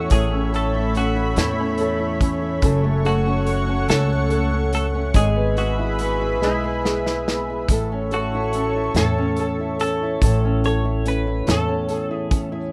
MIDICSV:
0, 0, Header, 1, 6, 480
1, 0, Start_track
1, 0, Key_signature, 3, "major"
1, 0, Tempo, 840336
1, 66, Time_signature, 6, 3, 24, 8
1, 7267, End_track
2, 0, Start_track
2, 0, Title_t, "Analog synth pad"
2, 0, Program_c, 0, 89
2, 0, Note_on_c, 0, 57, 71
2, 0, Note_on_c, 0, 73, 70
2, 0, Note_on_c, 0, 76, 63
2, 71, Note_on_c, 0, 83, 82
2, 1483, Note_off_c, 0, 73, 0
2, 1483, Note_off_c, 0, 76, 0
2, 1489, Note_off_c, 0, 83, 0
2, 1489, Note_on_c, 0, 78, 70
2, 1492, Note_on_c, 0, 73, 69
2, 1492, Note_on_c, 0, 85, 84
2, 2919, Note_off_c, 0, 78, 0
2, 2920, Note_off_c, 0, 73, 0
2, 2920, Note_off_c, 0, 85, 0
2, 2923, Note_off_c, 0, 57, 0
2, 2926, Note_on_c, 0, 76, 66
2, 2927, Note_on_c, 0, 83, 84
2, 2928, Note_on_c, 0, 68, 74
2, 2930, Note_on_c, 0, 71, 68
2, 4368, Note_off_c, 0, 68, 0
2, 4368, Note_off_c, 0, 83, 0
2, 4369, Note_off_c, 0, 71, 0
2, 4392, Note_on_c, 0, 69, 75
2, 4397, Note_on_c, 0, 73, 68
2, 4397, Note_on_c, 0, 85, 80
2, 5804, Note_off_c, 0, 76, 0
2, 5821, Note_off_c, 0, 69, 0
2, 5823, Note_off_c, 0, 73, 0
2, 5823, Note_off_c, 0, 85, 0
2, 7267, End_track
3, 0, Start_track
3, 0, Title_t, "Clean electric guitar"
3, 0, Program_c, 1, 27
3, 0, Note_on_c, 1, 66, 83
3, 67, Note_off_c, 1, 66, 0
3, 69, Note_on_c, 1, 68, 93
3, 291, Note_off_c, 1, 68, 0
3, 319, Note_on_c, 1, 69, 86
3, 535, Note_off_c, 1, 69, 0
3, 556, Note_on_c, 1, 66, 84
3, 790, Note_on_c, 1, 64, 73
3, 797, Note_off_c, 1, 66, 0
3, 1302, Note_off_c, 1, 64, 0
3, 1750, Note_on_c, 1, 66, 82
3, 2224, Note_off_c, 1, 66, 0
3, 2226, Note_on_c, 1, 69, 93
3, 2680, Note_off_c, 1, 69, 0
3, 2712, Note_on_c, 1, 69, 88
3, 2775, Note_off_c, 1, 69, 0
3, 2949, Note_on_c, 1, 68, 89
3, 3168, Note_off_c, 1, 68, 0
3, 3188, Note_on_c, 1, 66, 82
3, 3644, Note_off_c, 1, 66, 0
3, 3680, Note_on_c, 1, 64, 70
3, 4193, Note_off_c, 1, 64, 0
3, 4649, Note_on_c, 1, 66, 73
3, 5122, Note_off_c, 1, 66, 0
3, 5124, Note_on_c, 1, 69, 78
3, 5576, Note_off_c, 1, 69, 0
3, 5603, Note_on_c, 1, 69, 87
3, 6085, Note_off_c, 1, 69, 0
3, 6087, Note_on_c, 1, 73, 88
3, 6327, Note_off_c, 1, 73, 0
3, 6331, Note_on_c, 1, 71, 88
3, 6568, Note_off_c, 1, 71, 0
3, 6577, Note_on_c, 1, 69, 76
3, 6914, Note_off_c, 1, 69, 0
3, 6914, Note_on_c, 1, 68, 76
3, 7079, Note_off_c, 1, 68, 0
3, 7267, End_track
4, 0, Start_track
4, 0, Title_t, "Nylon-string guitar"
4, 0, Program_c, 2, 24
4, 0, Note_on_c, 2, 45, 73
4, 0, Note_on_c, 2, 61, 54
4, 0, Note_on_c, 2, 64, 51
4, 0, Note_on_c, 2, 69, 60
4, 59, Note_off_c, 2, 45, 0
4, 66, Note_on_c, 2, 45, 79
4, 188, Note_off_c, 2, 61, 0
4, 190, Note_on_c, 2, 61, 59
4, 298, Note_off_c, 2, 69, 0
4, 301, Note_on_c, 2, 69, 61
4, 421, Note_off_c, 2, 64, 0
4, 428, Note_on_c, 2, 64, 51
4, 547, Note_off_c, 2, 61, 0
4, 549, Note_on_c, 2, 61, 52
4, 658, Note_off_c, 2, 64, 0
4, 665, Note_on_c, 2, 64, 54
4, 783, Note_off_c, 2, 45, 0
4, 789, Note_on_c, 2, 45, 73
4, 790, Note_off_c, 2, 69, 0
4, 793, Note_on_c, 2, 69, 64
4, 907, Note_off_c, 2, 61, 0
4, 910, Note_on_c, 2, 61, 58
4, 1025, Note_off_c, 2, 69, 0
4, 1027, Note_on_c, 2, 69, 61
4, 1134, Note_off_c, 2, 64, 0
4, 1141, Note_on_c, 2, 64, 53
4, 1263, Note_off_c, 2, 61, 0
4, 1265, Note_on_c, 2, 61, 60
4, 1377, Note_off_c, 2, 64, 0
4, 1383, Note_on_c, 2, 64, 58
4, 1499, Note_off_c, 2, 45, 0
4, 1501, Note_on_c, 2, 42, 81
4, 1505, Note_off_c, 2, 69, 0
4, 1507, Note_on_c, 2, 69, 69
4, 1549, Note_off_c, 2, 64, 0
4, 1619, Note_off_c, 2, 61, 0
4, 1621, Note_on_c, 2, 57, 59
4, 1737, Note_off_c, 2, 69, 0
4, 1744, Note_on_c, 2, 69, 66
4, 1864, Note_on_c, 2, 61, 58
4, 1980, Note_off_c, 2, 57, 0
4, 1986, Note_on_c, 2, 57, 55
4, 2095, Note_off_c, 2, 61, 0
4, 2102, Note_on_c, 2, 61, 53
4, 2219, Note_off_c, 2, 42, 0
4, 2221, Note_off_c, 2, 69, 0
4, 2225, Note_on_c, 2, 42, 76
4, 2229, Note_on_c, 2, 69, 63
4, 2333, Note_off_c, 2, 57, 0
4, 2340, Note_on_c, 2, 57, 58
4, 2453, Note_off_c, 2, 69, 0
4, 2460, Note_on_c, 2, 69, 59
4, 2578, Note_off_c, 2, 61, 0
4, 2585, Note_on_c, 2, 61, 50
4, 2694, Note_off_c, 2, 57, 0
4, 2701, Note_on_c, 2, 57, 58
4, 2818, Note_off_c, 2, 61, 0
4, 2825, Note_on_c, 2, 61, 55
4, 2940, Note_off_c, 2, 69, 0
4, 2941, Note_on_c, 2, 56, 78
4, 2945, Note_on_c, 2, 68, 68
4, 2988, Note_off_c, 2, 57, 0
4, 2990, Note_off_c, 2, 61, 0
4, 2991, Note_off_c, 2, 42, 0
4, 3059, Note_on_c, 2, 59, 58
4, 3179, Note_off_c, 2, 68, 0
4, 3185, Note_on_c, 2, 68, 61
4, 3308, Note_on_c, 2, 64, 55
4, 3421, Note_off_c, 2, 59, 0
4, 3432, Note_on_c, 2, 59, 55
4, 3548, Note_off_c, 2, 64, 0
4, 3551, Note_on_c, 2, 64, 54
4, 3661, Note_off_c, 2, 56, 0
4, 3663, Note_off_c, 2, 68, 0
4, 3668, Note_on_c, 2, 56, 72
4, 3671, Note_on_c, 2, 68, 64
4, 3785, Note_off_c, 2, 59, 0
4, 3792, Note_on_c, 2, 59, 57
4, 3906, Note_off_c, 2, 68, 0
4, 3913, Note_on_c, 2, 68, 56
4, 4035, Note_off_c, 2, 64, 0
4, 4037, Note_on_c, 2, 64, 50
4, 4151, Note_off_c, 2, 59, 0
4, 4160, Note_on_c, 2, 59, 54
4, 4281, Note_off_c, 2, 64, 0
4, 4283, Note_on_c, 2, 64, 52
4, 4393, Note_off_c, 2, 68, 0
4, 4399, Note_on_c, 2, 45, 74
4, 4405, Note_on_c, 2, 69, 64
4, 4440, Note_off_c, 2, 56, 0
4, 4444, Note_off_c, 2, 59, 0
4, 4523, Note_on_c, 2, 61, 54
4, 4636, Note_off_c, 2, 69, 0
4, 4639, Note_on_c, 2, 69, 63
4, 4765, Note_off_c, 2, 64, 0
4, 4767, Note_on_c, 2, 64, 53
4, 4882, Note_off_c, 2, 61, 0
4, 4884, Note_on_c, 2, 61, 55
4, 5000, Note_off_c, 2, 64, 0
4, 5007, Note_on_c, 2, 64, 53
4, 5118, Note_off_c, 2, 45, 0
4, 5126, Note_on_c, 2, 45, 74
4, 5129, Note_off_c, 2, 69, 0
4, 5131, Note_on_c, 2, 69, 62
4, 5243, Note_off_c, 2, 61, 0
4, 5245, Note_on_c, 2, 61, 61
4, 5365, Note_off_c, 2, 69, 0
4, 5368, Note_on_c, 2, 69, 60
4, 5481, Note_off_c, 2, 64, 0
4, 5487, Note_on_c, 2, 64, 50
4, 5601, Note_off_c, 2, 61, 0
4, 5603, Note_on_c, 2, 61, 55
4, 5720, Note_off_c, 2, 64, 0
4, 5728, Note_on_c, 2, 64, 55
4, 5837, Note_off_c, 2, 45, 0
4, 5843, Note_on_c, 2, 45, 78
4, 5845, Note_off_c, 2, 69, 0
4, 5848, Note_on_c, 2, 69, 65
4, 5964, Note_off_c, 2, 61, 0
4, 5967, Note_on_c, 2, 61, 58
4, 6082, Note_off_c, 2, 69, 0
4, 6085, Note_on_c, 2, 69, 65
4, 6191, Note_off_c, 2, 64, 0
4, 6198, Note_on_c, 2, 64, 53
4, 6315, Note_off_c, 2, 61, 0
4, 6317, Note_on_c, 2, 61, 55
4, 6431, Note_off_c, 2, 64, 0
4, 6438, Note_on_c, 2, 64, 55
4, 6543, Note_off_c, 2, 45, 0
4, 6550, Note_on_c, 2, 45, 75
4, 6554, Note_off_c, 2, 69, 0
4, 6557, Note_on_c, 2, 69, 64
4, 6669, Note_off_c, 2, 61, 0
4, 6672, Note_on_c, 2, 61, 59
4, 6796, Note_off_c, 2, 69, 0
4, 6799, Note_on_c, 2, 69, 58
4, 6909, Note_off_c, 2, 64, 0
4, 6916, Note_on_c, 2, 64, 52
4, 7029, Note_off_c, 2, 61, 0
4, 7031, Note_on_c, 2, 61, 57
4, 7145, Note_off_c, 2, 64, 0
4, 7152, Note_on_c, 2, 64, 57
4, 7262, Note_off_c, 2, 45, 0
4, 7266, Note_off_c, 2, 69, 0
4, 7267, Note_off_c, 2, 61, 0
4, 7267, Note_off_c, 2, 64, 0
4, 7267, End_track
5, 0, Start_track
5, 0, Title_t, "Upright bass"
5, 0, Program_c, 3, 32
5, 61, Note_on_c, 3, 33, 96
5, 759, Note_off_c, 3, 33, 0
5, 778, Note_on_c, 3, 40, 92
5, 1475, Note_off_c, 3, 40, 0
5, 1497, Note_on_c, 3, 30, 100
5, 2194, Note_off_c, 3, 30, 0
5, 2217, Note_on_c, 3, 37, 86
5, 2915, Note_off_c, 3, 37, 0
5, 2938, Note_on_c, 3, 32, 92
5, 3660, Note_off_c, 3, 32, 0
5, 3660, Note_on_c, 3, 35, 79
5, 4364, Note_off_c, 3, 35, 0
5, 4388, Note_on_c, 3, 33, 93
5, 5089, Note_off_c, 3, 33, 0
5, 5109, Note_on_c, 3, 40, 85
5, 5809, Note_off_c, 3, 40, 0
5, 5835, Note_on_c, 3, 33, 101
5, 6530, Note_off_c, 3, 33, 0
5, 6554, Note_on_c, 3, 40, 95
5, 7246, Note_off_c, 3, 40, 0
5, 7267, End_track
6, 0, Start_track
6, 0, Title_t, "Drums"
6, 57, Note_on_c, 9, 42, 86
6, 62, Note_on_c, 9, 36, 95
6, 114, Note_off_c, 9, 42, 0
6, 119, Note_off_c, 9, 36, 0
6, 308, Note_on_c, 9, 42, 42
6, 365, Note_off_c, 9, 42, 0
6, 542, Note_on_c, 9, 42, 59
6, 599, Note_off_c, 9, 42, 0
6, 778, Note_on_c, 9, 42, 74
6, 788, Note_on_c, 9, 38, 101
6, 836, Note_off_c, 9, 42, 0
6, 845, Note_off_c, 9, 38, 0
6, 1014, Note_on_c, 9, 42, 54
6, 1072, Note_off_c, 9, 42, 0
6, 1260, Note_on_c, 9, 36, 89
6, 1262, Note_on_c, 9, 42, 80
6, 1317, Note_off_c, 9, 36, 0
6, 1319, Note_off_c, 9, 42, 0
6, 1496, Note_on_c, 9, 42, 88
6, 1499, Note_on_c, 9, 36, 101
6, 1554, Note_off_c, 9, 42, 0
6, 1556, Note_off_c, 9, 36, 0
6, 1742, Note_on_c, 9, 42, 45
6, 1799, Note_off_c, 9, 42, 0
6, 1979, Note_on_c, 9, 42, 63
6, 2036, Note_off_c, 9, 42, 0
6, 2219, Note_on_c, 9, 42, 70
6, 2229, Note_on_c, 9, 38, 99
6, 2276, Note_off_c, 9, 42, 0
6, 2286, Note_off_c, 9, 38, 0
6, 2457, Note_on_c, 9, 42, 52
6, 2514, Note_off_c, 9, 42, 0
6, 2700, Note_on_c, 9, 42, 78
6, 2757, Note_off_c, 9, 42, 0
6, 2936, Note_on_c, 9, 42, 90
6, 2938, Note_on_c, 9, 36, 97
6, 2993, Note_off_c, 9, 42, 0
6, 2995, Note_off_c, 9, 36, 0
6, 3180, Note_on_c, 9, 42, 46
6, 3238, Note_off_c, 9, 42, 0
6, 3420, Note_on_c, 9, 42, 65
6, 3477, Note_off_c, 9, 42, 0
6, 3668, Note_on_c, 9, 38, 51
6, 3725, Note_off_c, 9, 38, 0
6, 3915, Note_on_c, 9, 38, 79
6, 3972, Note_off_c, 9, 38, 0
6, 4035, Note_on_c, 9, 38, 62
6, 4093, Note_off_c, 9, 38, 0
6, 4158, Note_on_c, 9, 38, 92
6, 4215, Note_off_c, 9, 38, 0
6, 4390, Note_on_c, 9, 36, 91
6, 4390, Note_on_c, 9, 42, 90
6, 4447, Note_off_c, 9, 36, 0
6, 4447, Note_off_c, 9, 42, 0
6, 4633, Note_on_c, 9, 42, 43
6, 4691, Note_off_c, 9, 42, 0
6, 4871, Note_on_c, 9, 42, 61
6, 4928, Note_off_c, 9, 42, 0
6, 5110, Note_on_c, 9, 42, 78
6, 5119, Note_on_c, 9, 38, 99
6, 5167, Note_off_c, 9, 42, 0
6, 5177, Note_off_c, 9, 38, 0
6, 5349, Note_on_c, 9, 42, 55
6, 5406, Note_off_c, 9, 42, 0
6, 5595, Note_on_c, 9, 42, 79
6, 5652, Note_off_c, 9, 42, 0
6, 5835, Note_on_c, 9, 42, 86
6, 5836, Note_on_c, 9, 36, 91
6, 5892, Note_off_c, 9, 42, 0
6, 5893, Note_off_c, 9, 36, 0
6, 6079, Note_on_c, 9, 42, 46
6, 6136, Note_off_c, 9, 42, 0
6, 6315, Note_on_c, 9, 42, 62
6, 6372, Note_off_c, 9, 42, 0
6, 6552, Note_on_c, 9, 42, 73
6, 6561, Note_on_c, 9, 38, 103
6, 6609, Note_off_c, 9, 42, 0
6, 6619, Note_off_c, 9, 38, 0
6, 6789, Note_on_c, 9, 42, 52
6, 6847, Note_off_c, 9, 42, 0
6, 7032, Note_on_c, 9, 36, 86
6, 7032, Note_on_c, 9, 42, 82
6, 7089, Note_off_c, 9, 36, 0
6, 7089, Note_off_c, 9, 42, 0
6, 7267, End_track
0, 0, End_of_file